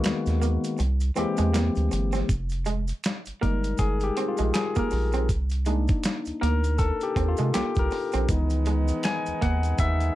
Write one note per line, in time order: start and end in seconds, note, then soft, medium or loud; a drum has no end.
0.00 0.68 D#3 loud
0.00 0.68 G#3 medium
0.00 0.68 A#3 loud
0.00 0.69 B3 medium
0.00 0.69 F#4 loud
0.00 closed hi-hat medium
0.04 finger snap medium
0.04 snare loud
0.04 maracas medium
0.26 0.58 D#2 medium
0.26 snare soft
0.26 closed hi-hat soft
0.26 maracas soft
0.42 0.60 A#3 medium
0.42 closed hi-hat medium
0.42 maracas soft
0.64 closed hi-hat soft
0.64 maracas soft
0.78 1.11 C2 loud
0.78 muted clean electric guitar stroke soft
0.78 closed hi-hat medium
0.78 maracas medium
1.00 closed hi-hat soft
1.00 maracas soft
1.16 1.26 E2 soft
1.16 2.20 E3 medium
1.16 2.21 G#3 medium
1.16 2.21 A#3 medium
1.16 1.35 C4 medium
1.16 2.21 C4 medium
1.16 2.22 G4 medium
1.16 closed hi-hat medium
1.16 maracas soft
1.37 1.70 E2 medium
1.37 1.51 G#3 medium
1.37 closed hi-hat soft
1.37 maracas soft
1.53 1.72 A#3 medium
1.53 finger snap medium
1.53 snare medium
1.53 closed hi-hat medium
1.53 maracas medium
1.75 1.90 D2 medium
1.75 closed hi-hat soft
1.75 maracas soft
1.91 2.24 G1 medium
1.91 muted clean electric guitar stroke soft
1.91 closed hi-hat medium
1.91 maracas soft
2.12 2.26 C4 medium
2.12 snare soft
2.12 closed hi-hat soft
2.12 maracas soft
2.29 2.93 F1 loud
2.29 kick loud
2.29 closed hi-hat medium
2.29 maracas medium
2.50 closed hi-hat soft
2.50 maracas soft
2.65 2.84 G#3 medium
2.65 closed hi-hat medium
2.65 maracas soft
2.88 closed hi-hat soft
2.88 maracas soft
3.04 finger snap medium
3.04 snare loud
3.04 closed hi-hat medium
3.04 maracas medium
3.25 3.33 G1 soft
3.25 closed hi-hat soft
3.25 maracas soft
3.41 3.74 G1 medium
3.41 3.94 G3 medium
3.41 3.94 G#3 soft
3.41 3.60 A#3 medium
3.41 3.94 D#4 medium
3.41 3.80 A#4 medium
3.41 kick medium
3.41 closed hi-hat medium
3.64 closed hi-hat soft
3.64 maracas soft
3.78 4.11 G1 loud
3.78 4.05 G#4 loud
3.78 muted clean electric guitar stroke soft
3.78 kick medium
3.78 closed hi-hat medium
3.78 maracas medium
4.00 4.30 G4 medium
4.00 closed hi-hat soft
4.00 maracas soft
4.17 4.35 C4 medium
4.17 closed hi-hat medium
4.28 4.54 F4 medium
4.37 4.52 A#1 medium
4.37 4.52 G#3 medium
4.37 closed hi-hat soft
4.37 maracas soft
4.54 4.80 G#4 medium
4.54 finger snap medium
4.54 snare loud
4.54 closed hi-hat medium
4.54 maracas medium
4.75 4.89 A#3 medium
4.75 5.14 A#4 medium
4.75 kick medium
4.75 closed hi-hat soft
4.75 maracas soft
4.91 5.31 A#1 medium
4.91 muted clean electric guitar stroke soft
4.91 open hi-hat soft
4.91 maracas soft
5.12 5.27 C4 medium
5.12 closed hi-hat soft
5.12 maracas soft
5.29 5.92 C2 loud
5.29 kick loud
5.29 closed hi-hat medium
5.29 maracas medium
5.50 closed hi-hat soft
5.50 maracas soft
5.65 5.85 G#3 medium
5.65 8.25 A#3 soft
5.65 8.26 D4 medium
5.65 8.25 D#4 medium
5.65 closed hi-hat medium
5.65 maracas soft
5.88 kick loud
5.88 closed hi-hat soft
5.88 maracas soft
6.03 finger snap medium
6.03 snare loud
6.03 closed hi-hat medium
6.03 maracas medium
6.25 6.33 D2 soft
6.25 closed hi-hat soft
6.25 maracas soft
6.41 6.92 D2 medium
6.41 6.60 A#3 medium
6.41 6.76 A#4 loud
6.41 closed hi-hat medium
6.64 closed hi-hat soft
6.64 maracas soft
6.78 7.05 A4 medium
6.78 muted clean electric guitar stroke soft
6.78 kick medium
6.78 closed hi-hat medium
6.78 maracas medium
7.01 7.29 G4 medium
7.01 closed hi-hat soft
7.01 maracas soft
7.16 7.35 D#2 medium
7.16 7.35 C4 medium
7.16 kick medium
7.16 closed hi-hat medium
7.28 7.54 F4 medium
7.37 7.52 C3 medium
7.37 7.51 G#3 medium
7.37 closed hi-hat soft
7.37 maracas soft
7.54 7.64 C2 soft
7.54 7.72 A#3 medium
7.54 7.77 G4 medium
7.54 finger snap medium
7.54 snare medium
7.54 closed hi-hat medium
7.54 maracas medium
7.75 7.90 C2 medium
7.75 kick medium
7.75 closed hi-hat soft
7.75 maracas soft
7.79 8.14 A#4 medium
7.91 muted clean electric guitar stroke soft
7.91 open hi-hat soft
7.91 maracas soft
8.12 8.27 A#1 medium
8.12 8.26 C4 medium
8.12 closed hi-hat soft
8.12 maracas soft
8.29 8.92 C#2 loud
8.29 10.15 D#3 medium
8.29 8.81 E3 medium
8.29 10.15 G#3 medium
8.29 10.15 B3 medium
8.29 8.81 B3 medium
8.29 10.15 D#4 medium
8.29 8.82 D#4 medium
8.29 kick loud
8.29 closed hi-hat medium
8.29 maracas medium
8.50 closed hi-hat medium
8.50 maracas soft
8.65 8.85 G#3 medium
8.65 closed hi-hat medium
8.65 maracas soft
8.88 closed hi-hat soft
8.88 maracas soft
9.03 9.39 G#5 loud
9.03 finger snap medium
9.03 snare loud
9.03 closed hi-hat medium
9.03 maracas medium
9.26 9.33 D#2 soft
9.26 closed hi-hat soft
9.26 maracas soft
9.41 9.74 D#2 medium
9.41 9.60 A#3 medium
9.41 9.81 F#5 loud
9.41 kick medium
9.41 closed hi-hat medium
9.63 closed hi-hat soft
9.63 maracas soft
9.78 10.11 D#2 loud
9.78 10.14 E5 loud
9.78 muted clean electric guitar stroke soft
9.78 kick loud
9.78 closed hi-hat medium
9.78 maracas medium
10.00 closed hi-hat soft
10.00 maracas soft